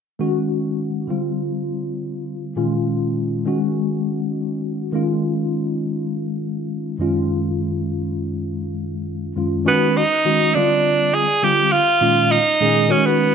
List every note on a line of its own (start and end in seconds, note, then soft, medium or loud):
0.19 1.08 D#3 medium
0.19 1.08 G#3 medium
0.19 1.09 C#4 medium
0.19 1.09 F#4 medium
1.07 2.53 D3 medium
1.07 2.53 G3 soft
1.07 2.54 C4 soft
1.07 2.54 F4 medium
2.56 3.45 A#2 medium
2.56 3.44 D#3 medium
2.56 3.44 G#3 medium
2.56 3.45 C#4 medium
2.56 3.46 F4 medium
3.45 4.90 D#3 medium
3.45 4.90 G#3 medium
3.45 4.91 C#4 medium
3.45 4.91 F#4 medium
4.92 6.95 D#3 medium
4.92 6.96 G#3 medium
4.92 6.96 C#4 medium
4.92 6.97 F4 medium
6.98 9.31 F#2 medium
6.98 9.32 D#3 medium
6.98 9.32 G#3 medium
6.98 9.32 C#4 medium
6.98 9.33 F4 medium
9.36 9.65 F#2 soft
9.36 9.64 D#3 soft
9.36 9.65 G#3 soft
9.36 9.65 C#4 soft
9.36 9.66 F4 medium
9.65 10.01 D#3 medium
9.65 10.01 G#3 medium
9.65 9.98 B3 medium
9.65 10.01 C#4 medium
9.65 10.02 F#4 medium
9.97 10.56 D#4 medium
10.24 10.54 D#3 medium
10.24 10.54 G#3 medium
10.24 10.54 C#4 medium
10.24 10.54 F#4 medium
10.55 11.25 D3 medium
10.55 11.26 G3 medium
10.55 11.26 C4 medium
10.55 11.15 D4 medium
10.55 11.26 F4 medium
11.14 11.45 G#4 medium
11.42 11.78 D3 medium
11.42 11.78 G3 medium
11.42 11.79 C4 medium
11.42 11.79 F4 medium
11.42 11.74 G4 medium
11.72 12.33 F4 loud
12.01 12.37 A#2 medium
12.01 12.37 D#3 medium
12.01 12.37 G#3 medium
12.01 12.37 C#4 medium
12.01 12.37 F4 medium
12.31 12.92 D#4 medium
12.61 12.90 A#2 medium
12.61 12.88 D#3 medium
12.61 12.88 G#3 medium
12.61 12.88 C#4 medium
12.61 12.90 G#4 medium
12.89 13.35 D#3 medium
12.89 13.35 G#3 medium
12.89 13.35 C#4 medium
12.89 13.07 C#4 medium
12.89 13.35 F#4 medium
13.06 13.35 B3 medium